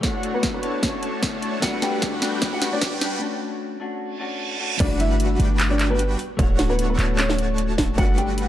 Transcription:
Already playing: riser
0.01 A3 D4 E4 F#4 C#5 F#5, kick, snare, closed hi-hat
0.23 closed hi-hat
0.34 B3 B4
0.43 kick, snare, closed hi-hat
0.54 B3 B4
0.61 A3 D4 E4 F#4 C#5 A5, closed hi-hat
0.83 C#4 C#5, kick, snare, closed hi-hat
1.03 closed hi-hat
1.23 kick, snare, closed hi-hat
1.42 closed hi-hat
1.60 G3 A3 B3 D4 F#4 B4 F#5, kick, snare, closed hi-hat
1.82 G4 G5, snare, closed hi-hat
2.02 kick, snare, closed hi-hat
2.20 G3 A3 B3 D4 F#4 B4 G5, snare, closed hi-hat
2.42 kick, snare, closed hi-hat
2.53 F#4 F#5
2.62 snare, closed hi-hat
2.72 A3 B3 D4 F#4 D5
2.82 kick, snare, closed hi-hat
3.01 snare, closed hi-hat
3.19 A3 C#4 D4 F#4
3.80 A3 C#4 D4 F#4
4.01 reverse cymbal
4.19 A3 C#4 D4 F#4
4.59 A3 C#4 D4 F#4
4.78 G1 G3 A3 B3 D4 F#4 B4 D5 F#5, kick, closed hi-hat, crash, impact
4.82 F#4
5.00 E4 E5, closed hi-hat
5.20 closed hi-hat
5.38 G1 G3 A3 B3 D4 F#4 B4 G5, closed hi-hat
5.60 clap, closed hi-hat
5.70 D4 D5
5.79 clap, closed hi-hat
5.89 A3 B3 D4 F#4 B4
5.99 closed hi-hat
6.19 open hi-hat
6.37 D1 A3 D4 E4 F#4 C#5 F#5, kick, closed hi-hat
6.41 F#4
6.59 snare, closed hi-hat
6.70 B3 B4
6.79 closed hi-hat
6.90 B3 B4
6.97 D1 A3 D4 E4 F#4 C#5 A5, clap, closed hi-hat
7.19 C#4 C#5, clap, closed hi-hat
7.30 snare
7.39 closed hi-hat
7.58 closed hi-hat
7.78 kick, snare, open hi-hat
7.96 G1 G3 A3 B3 D4 F#4 B4 F#5, kick, closed hi-hat
8.18 G4 G5, closed hi-hat
8.38 closed hi-hat

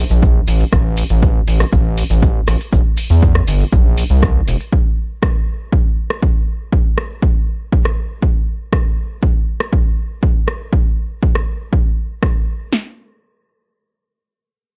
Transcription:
0.10 A#1, maracas
0.23 kick, maracas
0.48 A1, open hi-hat, maracas
0.60 maracas
0.72 A1, kick, cross-stick, maracas
0.97 open hi-hat, maracas
1.10 A1, maracas
1.22 kick, maracas
1.48 A1, open hi-hat, maracas
1.60 cross-stick, maracas
1.73 A1, kick, maracas
1.98 open hi-hat, maracas
2.10 A1, maracas
2.23 kick, maracas
2.47 A1, cross-stick, open hi-hat, maracas
2.60 maracas
2.73 A1, kick, maracas
2.97 open hi-hat, maracas
3.10 E2, maracas
3.23 kick, maracas
3.35 cross-stick
3.47 G1, open hi-hat, maracas
3.60 maracas
3.73 A#1, kick, maracas
3.98 open hi-hat, maracas
4.10 C2, maracas
4.23 kick, cross-stick, maracas
4.47 E1, open hi-hat, maracas
4.60 maracas
4.73 kick
5.23 kick, cross-stick
5.73 kick
6.10 cross-stick
6.23 kick
6.73 kick
6.98 cross-stick
7.23 kick
7.72 kick
7.85 cross-stick
8.23 kick
8.73 kick, cross-stick
9.23 kick
9.60 cross-stick
9.73 kick
10.23 kick
10.48 cross-stick
10.73 kick
11.23 kick
11.35 cross-stick
11.73 kick
12.23 kick, cross-stick
12.73 snare

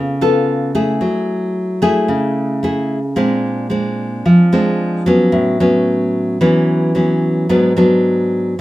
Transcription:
Already playing: C#3 B3 F4 A4
0.21 B3 F4 A4
0.75 A3 E4 G#4
1.01 F#3
1.82 A3 E4 G#4
2.08 C#3
2.63 A3 E4 G#4
3.16 A#2 G#3 C4 D4
3.70 G#3 C4 D4
4.26 F3
4.53 G#3 C4 D4
5.06 F#3 B3 C#4
5.32 A2
5.60 F#3 B3 C#4
6.41 E3 F#3 B3 C#4
6.95 F#3 B3 C#4
7.49 G#2 F#3 B3 D4
7.77 F#3 B3 D4

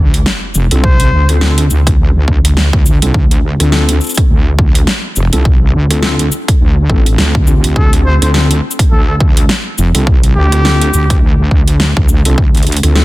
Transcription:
Already playing: D2, sub drop
0.14 closed hi-hat
0.26 snare
0.55 F1, shaker
0.71 C2 C4 D4 F4 A4, closed hi-hat
0.84 C5, kick
1.00 closed hi-hat
1.12 D2
1.29 C4 D4 F4 A4, cross-stick, closed hi-hat
1.41 C4 D4 F4 A4, snare
1.58 closed hi-hat
1.70 D2, shaker
1.87 kick, cross-stick, closed hi-hat
2.15 D2
2.28 D2, kick
2.45 closed hi-hat
2.57 snare
2.73 D2, kick
2.86 shaker
3.02 C2 C4 D4 F4 A4, closed hi-hat
3.14 D2, kick
3.31 closed hi-hat
3.60 D2 C4 D4 F4 A4, cross-stick, closed hi-hat
3.72 C4 D4 F4 A4, snare
3.89 closed hi-hat
4.01 shaker
4.04 shaker
4.07 shaker
4.09 shaker
4.15 kick, cross-stick, closed hi-hat, shaker
4.30 D2
4.59 kick, cross-stick
4.75 closed hi-hat
4.87 snare
5.16 F1, shaker
5.33 C2 C4 D4 F4 A4, closed hi-hat
5.45 kick
5.74 D2
5.91 C4 D4 F4 A4, cross-stick, closed hi-hat
6.03 C4 D4 F4 A4, snare
6.19 closed hi-hat
6.32 shaker
6.48 kick, cross-stick, closed hi-hat
6.61 D2
6.90 A1 C4 D4 F4 A4, kick
7.06 closed hi-hat
7.18 D2, snare
7.35 kick
7.47 C4 D4 F4 G4, shaker
7.64 D2, closed hi-hat
7.76 D2 A4, kick
7.93 closed hi-hat
8.05 C5
8.22 D2 C4 D4 F4 A4 C5, cross-stick, closed hi-hat
8.34 C4 D4 F4 A4, snare
8.51 closed hi-hat
8.71 shaker
8.79 kick, cross-stick, closed hi-hat
8.91 D2 A4
9.08 A4
9.20 kick, cross-stick
9.37 closed hi-hat
9.49 snare
9.78 F1, shaker
9.95 C2 C4 D4 F4 A4, closed hi-hat
10.07 kick
10.23 closed hi-hat
10.36 D2 G4
10.52 C4 D4 F4 A4, cross-stick, closed hi-hat
10.65 C4 D4 F4 A4, snare
10.81 closed hi-hat
10.94 D2, shaker
11.10 kick, cross-stick, closed hi-hat
11.39 D2
11.51 D2, kick
11.68 closed hi-hat
11.80 snare
11.97 D2, kick
12.09 shaker
12.25 C2 C4 D4 F4 A4, closed hi-hat
12.38 D2, kick
12.55 closed hi-hat
12.57 closed hi-hat
12.63 closed hi-hat
12.67 closed hi-hat
12.72 closed hi-hat
12.77 closed hi-hat
12.83 D2 C4 D4 F4 A4, cross-stick, closed hi-hat
12.95 C4 D4 F4 A4, snare

